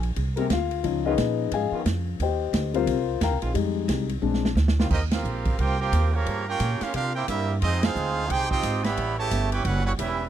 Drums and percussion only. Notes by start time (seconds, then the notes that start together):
0.03 ride
0.16 kick, ride
0.37 ride
0.50 kick, snare, hi-hat pedal, ride
0.71 ride
0.84 kick, ride
1.18 kick, snare, hi-hat pedal, ride
1.51 kick, ride
1.86 kick, snare, hi-hat pedal, ride
2.20 kick, ride
2.54 kick, snare, hi-hat pedal, ride
2.74 ride
2.87 kick, ride
3.21 kick, snare, hi-hat pedal, ride
3.42 ride
3.55 kick, ride
3.89 kick, snare, hi-hat pedal, ride
4.09 ride
4.34 snare
4.45 snare
4.56 snare, hi-hat pedal
4.68 snare
4.80 snare
4.91 kick, crash
5.11 snare, ride
5.24 hi-hat pedal
5.45 kick, ride
5.59 kick, ride
5.93 kick, hi-hat pedal, ride
6.26 kick, ride
6.60 kick, hi-hat pedal, ride
6.81 snare, ride
6.94 kick, ride
7.28 kick, hi-hat pedal, ride
7.62 kick, ride
7.83 snare, ride
7.96 hi-hat pedal
8.30 kick, ride
8.51 kick
8.63 kick, hi-hat pedal, ride
8.84 snare, ride
8.97 kick, ride
9.31 kick, hi-hat pedal, ride
9.52 ride
9.65 kick, ride
9.99 kick, hi-hat pedal, ride